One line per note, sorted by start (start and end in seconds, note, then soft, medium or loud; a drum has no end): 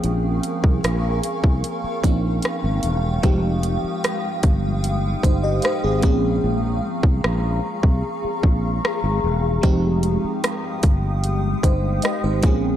0.00 1.99 F3 medium
0.00 1.99 A#3 medium
0.00 2.00 C4 medium
0.00 2.00 C#4 medium
0.00 2.01 G#4 medium
0.00 3.20 A#4 medium
0.00 12.77 F5 medium
0.00 1.22 G#5 medium
0.00 3.20 C#6 medium
0.00 closed hi-hat medium
0.04 0.39 A#1 loud
0.43 closed hi-hat medium
0.64 0.81 C2 medium
0.64 kick medium
0.84 1.19 A#1 loud
0.84 cross-stick loud
0.84 closed hi-hat medium
1.23 6.00 G5 medium
1.23 closed hi-hat medium
1.44 1.61 C2 medium
1.44 kick medium
1.64 closed hi-hat medium
1.84 muted fretless electric bass stroke soft
2.03 2.39 A#1 medium
2.03 3.21 F3 medium
2.03 3.24 A#3 soft
2.03 3.23 C4 medium
2.03 3.24 C#4 soft
2.03 3.23 D#4 medium
2.03 kick medium
2.03 closed hi-hat medium
2.42 cross-stick loud
2.42 closed hi-hat medium
2.64 2.81 G#1 medium
2.83 3.19 E1 medium
2.83 closed hi-hat medium
3.22 3.76 F1 loud
3.22 5.99 F3 medium
3.22 5.99 G#3 medium
3.22 6.01 G#3 medium
3.22 5.20 C4 medium
3.22 5.20 D#4 medium
3.22 5.20 G4 medium
3.22 6.01 D#6 medium
3.22 kick loud
3.22 closed hi-hat medium
3.63 closed hi-hat medium
3.84 muted fretless electric bass stroke soft
4.04 cross-stick loud
4.04 closed hi-hat medium
4.43 5.13 G1 medium
4.43 kick medium
4.43 closed hi-hat medium
4.84 closed hi-hat medium
5.23 5.59 G1 medium
5.23 5.43 D#4 medium
5.23 5.42 C5 medium
5.23 kick medium
5.23 closed hi-hat medium
5.43 5.63 G4 medium
5.43 5.62 D#5 medium
5.62 5.83 D#4 medium
5.62 5.83 C5 medium
5.62 cross-stick loud
5.62 closed hi-hat medium
5.84 6.01 G#1 medium
5.84 6.02 C4 medium
5.84 6.04 G#4 medium
6.02 6.38 A#1 medium
6.02 9.19 F3 medium
6.02 9.19 A#3 medium
6.02 9.19 C4 medium
6.02 9.20 C#4 medium
6.02 9.60 G#4 medium
6.02 9.20 G#4 medium
6.02 9.59 A#5 medium
6.02 9.60 C#6 medium
6.02 kick medium
6.02 closed hi-hat medium
6.44 6.79 A#1 medium
7.03 7.21 C2 medium
7.03 kick medium
7.24 7.59 A#1 loud
7.24 cross-stick loud
7.83 8.01 C2 medium
7.83 kick medium
8.24 muted fretless electric bass stroke soft
8.43 8.79 A#1 medium
8.43 kick medium
8.85 cross-stick loud
9.04 9.21 G#1 medium
9.24 9.59 E1 medium
9.62 10.16 F1 loud
9.62 12.39 F3 medium
9.62 12.39 G#3 medium
9.62 12.77 G#3 medium
9.62 12.39 C4 medium
9.62 11.60 D#4 medium
9.62 11.60 G4 medium
9.62 12.41 G5 medium
9.62 12.41 D#6 medium
9.62 kick loud
9.62 closed hi-hat medium
10.03 closed hi-hat medium
10.24 muted fretless electric bass stroke soft
10.44 cross-stick loud
10.44 closed hi-hat medium
10.83 11.53 G1 medium
10.83 kick medium
10.83 closed hi-hat medium
11.24 closed hi-hat medium
11.63 11.98 G1 medium
11.63 12.02 D#4 medium
11.63 12.02 C5 medium
11.63 kick medium
11.63 closed hi-hat medium
12.02 12.23 G4 medium
12.02 12.23 D#5 medium
12.02 cross-stick loud
12.02 closed hi-hat medium
12.24 12.41 G#1 medium
12.24 12.62 D#4 medium
12.24 12.62 C5 medium
12.42 12.77 A#1 loud
12.42 12.77 F3 medium
12.42 12.77 A#3 medium
12.42 12.77 C4 medium
12.42 12.77 C#4 medium
12.42 12.77 G#4 medium
12.42 12.77 A#5 medium
12.42 12.77 C#6 medium
12.42 kick loud
12.42 closed hi-hat medium